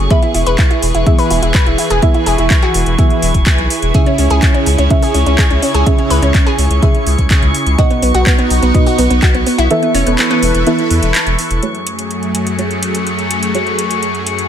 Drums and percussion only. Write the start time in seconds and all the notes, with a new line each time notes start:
0.10 kick, closed hi-hat
0.22 closed hi-hat
0.34 open hi-hat
0.46 closed hi-hat
0.58 kick, clap, closed hi-hat
0.71 closed hi-hat
0.82 open hi-hat
0.95 closed hi-hat
1.06 kick, closed hi-hat
1.19 open hi-hat
1.30 open hi-hat
1.43 closed hi-hat
1.54 kick, clap, closed hi-hat
1.66 closed hi-hat
1.78 open hi-hat
1.90 closed hi-hat
2.02 kick, closed hi-hat
2.14 closed hi-hat
2.26 open hi-hat
2.38 closed hi-hat
2.50 kick, clap, closed hi-hat
2.62 closed hi-hat
2.74 open hi-hat
2.86 closed hi-hat
2.98 kick, closed hi-hat
3.10 closed hi-hat
3.22 open hi-hat
3.34 kick, closed hi-hat
3.46 kick, clap, closed hi-hat
3.58 closed hi-hat
3.70 open hi-hat
3.82 closed hi-hat
3.94 kick, closed hi-hat
4.06 closed hi-hat
4.18 open hi-hat
4.30 closed hi-hat
4.42 kick, clap, closed hi-hat
4.54 closed hi-hat
4.66 open hi-hat
4.78 closed hi-hat
4.90 kick, closed hi-hat
5.02 open hi-hat
5.14 open hi-hat
5.26 closed hi-hat
5.38 kick, clap, closed hi-hat
5.51 closed hi-hat
5.62 open hi-hat
5.75 closed hi-hat
5.86 kick, closed hi-hat
5.98 closed hi-hat
6.10 open hi-hat
6.22 closed hi-hat
6.34 kick, clap, closed hi-hat
6.47 closed hi-hat
6.59 open hi-hat
6.71 closed hi-hat
6.82 kick, closed hi-hat
6.95 closed hi-hat
7.07 open hi-hat
7.19 kick, closed hi-hat
7.31 kick, clap, closed hi-hat
7.43 closed hi-hat
7.54 open hi-hat
7.67 closed hi-hat
7.78 kick, closed hi-hat
7.91 closed hi-hat
8.02 open hi-hat
8.14 closed hi-hat
8.26 kick, clap, closed hi-hat
8.38 closed hi-hat
8.50 open hi-hat
8.63 closed hi-hat
8.74 kick, closed hi-hat
8.86 open hi-hat
8.98 open hi-hat
9.11 closed hi-hat
9.22 kick, clap, closed hi-hat
9.34 closed hi-hat
9.46 open hi-hat
9.59 closed hi-hat
9.71 closed hi-hat
9.83 closed hi-hat
9.95 open hi-hat
10.07 closed hi-hat
10.19 clap, closed hi-hat
10.31 closed hi-hat
10.43 open hi-hat
10.55 closed hi-hat
10.67 closed hi-hat
10.79 closed hi-hat
10.91 open hi-hat
11.03 closed hi-hat
11.15 clap, closed hi-hat
11.27 closed hi-hat
11.39 open hi-hat
11.51 closed hi-hat
11.63 closed hi-hat
11.75 closed hi-hat
11.87 closed hi-hat
11.99 closed hi-hat
12.11 closed hi-hat
12.23 closed hi-hat
12.35 closed hi-hat
12.47 closed hi-hat
12.59 closed hi-hat
12.71 closed hi-hat
12.83 closed hi-hat
12.95 closed hi-hat
13.07 closed hi-hat
13.19 closed hi-hat
13.31 closed hi-hat
13.43 closed hi-hat
13.55 closed hi-hat
13.67 closed hi-hat
13.79 closed hi-hat
13.91 closed hi-hat
14.03 closed hi-hat
14.15 closed hi-hat
14.27 closed hi-hat
14.39 closed hi-hat